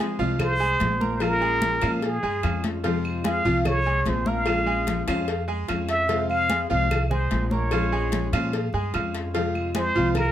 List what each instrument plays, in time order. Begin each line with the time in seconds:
0.00 steel-string acoustic guitar F3 G#3 C4 F4, grand piano G#3 G#4 G#5, cowbell, high conga
0.19 upright bass C2, grand piano F3 F4 F5, steel-string acoustic guitar F3 G#3 C4 F4, high conga
0.39 muted trumpet C5, muted steel-string acoustic guitar stroke, cowbell, high conga, low conga, claves
0.60 grand piano G#3 G#4 G#5, high conga
0.79 upright bass A#1, steel-string acoustic guitar F3 G#3 C4 F4, cowbell, high conga
1.00 grand piano A#3 A#4 A#5, high conga
1.14 muted trumpet C5
1.20 steel-string acoustic guitar F3 G#3 C#4 F4, grand piano F3 F4 F5, muted trumpet A#4, cowbell, high conga, claves
1.41 grand piano G#3 G#4 G#5, high conga
1.62 steel-string acoustic guitar F3 G#3 C#4 F4, cowbell, high conga
1.82 upright bass A#2, grand piano F3 F4 F5, steel-string acoustic guitar G#3 C#4 F4, cowbell, high conga, claves
2.01 muted trumpet G#4, muted steel-string acoustic guitar stroke, cowbell, high conga
2.23 upright bass G2, grand piano G#3 G#4 G#5, high conga
2.43 upright bass F2, steel-string acoustic guitar F3 G#3 C#4 F4, grand piano F4 F5 F6, cowbell, high conga, claves
2.64 cowbell, high conga
2.84 steel-string acoustic guitar C3 F3 G#3 C4 F4, grand piano F3 F4 F5, cowbell, high conga
3.05 high conga, claves
3.24 steel-string acoustic guitar F3 G#3 C4 F4, grand piano G#3 G#4 G#5, muted trumpet F5, cowbell, high conga
3.45 upright bass C2, grand piano F3 F4 F5, steel-string acoustic guitar F3 G#3 C4 F4, high conga
3.65 muted trumpet C#5, cowbell, high conga, low conga, claves
3.86 grand piano G#3 G#4 G#5, high conga
4.05 upright bass A#1, steel-string acoustic guitar F3 G#3 C4 F4, muted trumpet C5, cowbell, high conga
4.26 grand piano A#3 A#4 A#5, muted trumpet F5, high conga
4.46 grand piano F3 F4 F5, steel-string acoustic guitar F3 G#3 C#4 F4, cowbell, high conga, claves
4.66 grand piano G#3 G#4 G#5, high conga
4.87 steel-string acoustic guitar F3 G#3 C#4 F4, cowbell, high conga
5.07 upright bass F2, grand piano F3 F4 F5, steel-string acoustic guitar G#3 C#4 F4, cowbell, high conga, claves
5.27 muted steel-string acoustic guitar stroke, cowbell, high conga
5.48 grand piano G#3 G#4 G#5, high conga
5.68 upright bass F2, steel-string acoustic guitar F3 G#3 C#4 F4, grand piano F4 F5 F6, cowbell, high conga, claves
5.89 muted trumpet E5, cowbell
6.07 steel-string acoustic guitar C3 F3 G#3 C4 F4, grand piano F3 F4 F5, cowbell, high conga
6.29 muted trumpet F5, high conga, claves
6.49 steel-string acoustic guitar F3 G#3 C4 F4, grand piano G#3 G#4 G#5, cowbell, high conga
6.70 upright bass C2, grand piano F3 F4 F5, steel-string acoustic guitar F3 G#3 C4 F4, muted trumpet F5, high conga
6.91 cowbell, high conga, low conga, claves
7.11 grand piano G#3 G#4 G#5, muted trumpet C5, high conga, low conga
7.30 upright bass A#1, steel-string acoustic guitar F3 G#3 C4 F4, cowbell, high conga
7.51 grand piano A#3 A#4 A#5, muted trumpet C#5, high conga
7.71 steel-string acoustic guitar F3 G#3 C#4 F4, grand piano F3 F4 F5, cowbell, high conga, claves
7.92 grand piano G#3 G#4 G#5, high conga
8.12 steel-string acoustic guitar F3 G#3 C#4 F4, cowbell, high conga
8.33 upright bass A#2, grand piano F3 F4 F5, steel-string acoustic guitar G#3 C#4 F4, cowbell, high conga, claves
8.53 muted steel-string acoustic guitar stroke, cowbell, high conga
8.73 upright bass G2, grand piano G#3 G#4 G#5, high conga
8.93 upright bass F2, steel-string acoustic guitar F3 G#3 C#4 F4, grand piano F4 F5 F6, cowbell, high conga, claves
9.15 cowbell
9.34 steel-string acoustic guitar C3 F3 G#3 C4 F4, grand piano F3 F4 F5, cowbell, high conga
9.55 high conga, claves
9.75 steel-string acoustic guitar F3 G#3 C4 F4, grand piano G#3 G#4 G#5, muted trumpet C5, cowbell, high conga
9.95 upright bass C2, grand piano F3 F4 F5, steel-string acoustic guitar F3 G#3 C4 F4, high conga
10.15 muted trumpet A#4, muted steel-string acoustic guitar stroke, cowbell, high conga, low conga, claves